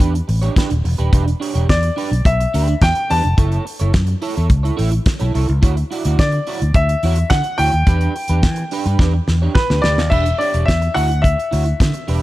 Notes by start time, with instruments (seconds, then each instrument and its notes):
0.00 fingered electric bass E2, clean electric guitar D4 G4 B4, kick, closed hi-hat
0.14 muted clean electric guitar stroke, closed hi-hat
0.28 fingered electric bass A1, muted clean electric guitar stroke, open hi-hat
0.42 clean electric guitar D4 G4 C#5, closed hi-hat
0.56 clean electric guitar D4 G4 B4, kick, snare, closed hi-hat
0.70 fingered electric bass D#1, muted clean electric guitar stroke, closed hi-hat
0.84 fingered electric bass E1, muted clean electric guitar stroke, open hi-hat
0.98 fingered electric bass D#1, clean electric guitar D4 G4 B4, closed hi-hat
1.12 fingered electric bass E1, clean electric guitar D4 G4 B4, kick, closed hi-hat
1.26 muted clean electric guitar stroke, closed hi-hat
1.40 clean electric guitar D4 G4 C#5, open hi-hat
1.54 fingered electric bass E1, clean electric guitar D4 G4 C#5, closed hi-hat
1.69 fingered electric bass E2, grand piano D5, muted clean electric guitar stroke, kick, snare, closed hi-hat
1.83 muted clean electric guitar stroke, closed hi-hat
1.96 clean electric guitar D4 G4 B4, open hi-hat
2.11 fingered electric bass B1, muted clean electric guitar stroke, closed hi-hat
2.25 fingered electric bass B1, grand piano E5, muted clean electric guitar stroke, kick, closed hi-hat
2.40 muted clean electric guitar stroke, closed hi-hat
2.54 fingered electric bass D2, clean electric guitar D4 G4 B4, open hi-hat
2.68 muted clean electric guitar stroke, closed hi-hat
2.82 fingered electric bass E2, grand piano G5, kick, snare, closed hi-hat
2.95 muted clean electric guitar stroke, closed hi-hat
3.10 fingered electric bass E2, clean electric guitar D4 G4 B4, grand piano A5, open hi-hat
3.23 fingered electric bass F1, muted clean electric guitar stroke, closed hi-hat
3.37 fingered electric bass F#1, clean electric guitar E4 A4 C#5, kick, closed hi-hat
3.52 closed hi-hat
3.65 muted clean electric guitar stroke, open hi-hat
3.79 fingered electric bass F#1, clean electric guitar E4 A4 C#5, closed hi-hat
3.94 fingered electric bass F#2, kick, snare, closed hi-hat
4.07 muted clean electric guitar stroke, closed hi-hat
4.22 clean electric guitar E4 A4 C#5, open hi-hat
4.35 fingered electric bass E2, clean electric guitar E4 A4 C#5, closed hi-hat
4.50 fingered electric bass C#2, muted clean electric guitar stroke, kick, closed hi-hat
4.63 clean electric guitar E4 A4 C#5, closed hi-hat
4.77 fingered electric bass A1, clean electric guitar E4 A4 C#5, open hi-hat
4.91 muted clean electric guitar stroke, closed hi-hat
5.06 muted clean electric guitar stroke, kick, snare, closed hi-hat
5.20 fingered electric bass B1, clean electric guitar E4 A4 C#5, closed hi-hat
5.34 fingered electric bass C2, clean electric guitar E4 A4 C#5, open hi-hat
5.48 fingered electric bass C#2, muted clean electric guitar stroke, closed hi-hat
5.62 fingered electric bass D2, clean electric guitar E4 F#4 C#5, kick, closed hi-hat
5.77 muted clean electric guitar stroke, closed hi-hat
5.91 clean electric guitar E4 F#4 D5, open hi-hat
6.05 fingered electric bass D2, clean electric guitar E4 F#4 D5, closed hi-hat
6.19 fingered electric bass D3, grand piano D5, kick, snare, closed hi-hat
6.32 muted clean electric guitar stroke, closed hi-hat
6.47 clean electric guitar E4 F#4 C#5, open hi-hat
6.61 fingered electric bass D2, muted clean electric guitar stroke, closed hi-hat
6.74 fingered electric bass D2, grand piano E5, muted clean electric guitar stroke, kick, closed hi-hat
6.89 muted clean electric guitar stroke, closed hi-hat
7.03 fingered electric bass E2, clean electric guitar E4 F#4 C#5, open hi-hat
7.16 muted clean electric guitar stroke, closed hi-hat
7.30 fingered electric bass D3, grand piano F#5, kick, snare, closed hi-hat
7.44 muted clean electric guitar stroke, closed hi-hat
7.58 fingered electric bass D2, clean electric guitar E4 F#4 C#5, grand piano G5, open hi-hat
7.73 fingered electric bass D#2, muted clean electric guitar stroke, closed hi-hat
7.87 fingered electric bass E2, clean electric guitar D4 G4 B4, kick, closed hi-hat
8.01 closed hi-hat
8.15 muted clean electric guitar stroke, open hi-hat
8.28 fingered electric bass E2, clean electric guitar D4 G4 B4, closed hi-hat
8.43 fingered electric bass E3, kick, snare, closed hi-hat
8.56 muted clean electric guitar stroke, closed hi-hat
8.71 clean electric guitar D4 G4 B4, open hi-hat
8.86 fingered electric bass G2, clean electric guitar D4 G4 B4, closed hi-hat
8.99 fingered electric bass E2, clean electric guitar D4 G4 B4, kick, snare
9.14 muted clean electric guitar stroke
9.28 fingered electric bass E2, muted clean electric guitar stroke, snare
9.42 clean electric guitar D4 G4 C#5
9.55 grand piano B4, kick, snare
9.70 fingered electric bass D2, clean electric guitar D4 G4 B4, snare
9.82 fingered electric bass D2, clean electric guitar D4 G4 B4, grand piano D5, snare
9.98 fingered electric bass D#2, muted clean electric guitar stroke, snare
10.10 fingered electric bass E1, clean electric guitar D4 G4 B4, grand piano E5, kick, crash
10.25 muted clean electric guitar stroke, closed hi-hat
10.38 clean electric guitar D4 G4 C#5, grand piano D5, open hi-hat
10.53 fingered electric bass E1, clean electric guitar D4 G4 C#5, closed hi-hat
10.66 fingered electric bass E2, grand piano E5, muted clean electric guitar stroke, kick, snare, closed hi-hat
10.82 muted clean electric guitar stroke, closed hi-hat
10.94 fingered electric bass D2, clean electric guitar E4 F#4 C#5, grand piano F#5, open hi-hat
11.09 muted clean electric guitar stroke, closed hi-hat
11.22 grand piano E5, muted clean electric guitar stroke, kick, closed hi-hat
11.37 muted clean electric guitar stroke, closed hi-hat
11.51 fingered electric bass D2, clean electric guitar E4 F#4 C#5, open hi-hat
11.66 muted clean electric guitar stroke, closed hi-hat
11.80 fingered electric bass D3, kick, snare, closed hi-hat
11.94 muted clean electric guitar stroke, closed hi-hat
12.08 fingered electric bass E1, clean electric guitar D4 G4 B4, open hi-hat